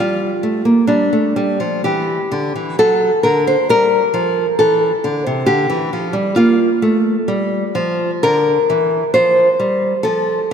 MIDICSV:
0, 0, Header, 1, 2, 480
1, 0, Start_track
1, 0, Tempo, 930233
1, 455, Time_signature, 3, 2, 24, 8
1, 1425, Tempo, 900901
1, 3825, Tempo, 967742
1, 4305, Tempo, 917431
1, 5508, End_track
2, 0, Start_track
2, 0, Title_t, "Nylon-string guitar"
2, 0, Program_c, 0, 24
2, 0, Note_on_c, 0, 55, 63
2, 0, Note_on_c, 0, 65, 78
2, 158, Note_off_c, 0, 55, 0
2, 222, Note_on_c, 0, 57, 59
2, 332, Note_off_c, 0, 57, 0
2, 336, Note_on_c, 0, 58, 57
2, 441, Note_off_c, 0, 65, 0
2, 449, Note_off_c, 0, 58, 0
2, 451, Note_on_c, 0, 62, 70
2, 455, Note_on_c, 0, 55, 62
2, 570, Note_off_c, 0, 55, 0
2, 582, Note_on_c, 0, 57, 52
2, 698, Note_off_c, 0, 57, 0
2, 703, Note_on_c, 0, 55, 63
2, 822, Note_off_c, 0, 55, 0
2, 825, Note_on_c, 0, 53, 57
2, 929, Note_off_c, 0, 62, 0
2, 944, Note_off_c, 0, 53, 0
2, 950, Note_on_c, 0, 67, 67
2, 953, Note_on_c, 0, 52, 61
2, 1125, Note_off_c, 0, 52, 0
2, 1195, Note_on_c, 0, 50, 65
2, 1304, Note_off_c, 0, 50, 0
2, 1318, Note_on_c, 0, 52, 54
2, 1405, Note_off_c, 0, 67, 0
2, 1424, Note_off_c, 0, 52, 0
2, 1439, Note_on_c, 0, 54, 65
2, 1440, Note_on_c, 0, 69, 87
2, 1606, Note_off_c, 0, 54, 0
2, 1661, Note_off_c, 0, 69, 0
2, 1676, Note_on_c, 0, 70, 75
2, 1681, Note_on_c, 0, 50, 61
2, 1789, Note_off_c, 0, 70, 0
2, 1804, Note_on_c, 0, 72, 72
2, 1847, Note_off_c, 0, 50, 0
2, 1913, Note_off_c, 0, 72, 0
2, 1922, Note_on_c, 0, 55, 69
2, 1926, Note_on_c, 0, 70, 88
2, 2088, Note_off_c, 0, 55, 0
2, 2158, Note_on_c, 0, 53, 65
2, 2325, Note_off_c, 0, 53, 0
2, 2374, Note_off_c, 0, 70, 0
2, 2398, Note_on_c, 0, 69, 77
2, 2404, Note_on_c, 0, 52, 60
2, 2569, Note_off_c, 0, 52, 0
2, 2639, Note_on_c, 0, 50, 68
2, 2746, Note_off_c, 0, 50, 0
2, 2759, Note_on_c, 0, 48, 61
2, 2852, Note_off_c, 0, 69, 0
2, 2865, Note_off_c, 0, 48, 0
2, 2865, Note_on_c, 0, 50, 68
2, 2865, Note_on_c, 0, 67, 81
2, 2977, Note_off_c, 0, 50, 0
2, 2988, Note_on_c, 0, 52, 62
2, 3098, Note_off_c, 0, 52, 0
2, 3113, Note_on_c, 0, 53, 57
2, 3219, Note_off_c, 0, 53, 0
2, 3220, Note_on_c, 0, 55, 66
2, 3319, Note_off_c, 0, 67, 0
2, 3333, Note_off_c, 0, 55, 0
2, 3342, Note_on_c, 0, 65, 83
2, 3348, Note_on_c, 0, 58, 66
2, 3517, Note_off_c, 0, 58, 0
2, 3589, Note_on_c, 0, 57, 65
2, 3763, Note_off_c, 0, 57, 0
2, 3832, Note_on_c, 0, 55, 64
2, 4002, Note_off_c, 0, 55, 0
2, 4065, Note_on_c, 0, 53, 70
2, 4238, Note_off_c, 0, 53, 0
2, 4287, Note_off_c, 0, 65, 0
2, 4303, Note_on_c, 0, 70, 88
2, 4306, Note_on_c, 0, 50, 73
2, 4480, Note_off_c, 0, 50, 0
2, 4547, Note_on_c, 0, 52, 60
2, 4718, Note_off_c, 0, 52, 0
2, 4765, Note_off_c, 0, 70, 0
2, 4778, Note_on_c, 0, 72, 89
2, 4783, Note_on_c, 0, 53, 65
2, 4955, Note_off_c, 0, 53, 0
2, 5017, Note_on_c, 0, 55, 56
2, 5191, Note_off_c, 0, 55, 0
2, 5238, Note_off_c, 0, 72, 0
2, 5246, Note_on_c, 0, 69, 74
2, 5253, Note_on_c, 0, 53, 57
2, 5432, Note_off_c, 0, 53, 0
2, 5508, Note_off_c, 0, 69, 0
2, 5508, End_track
0, 0, End_of_file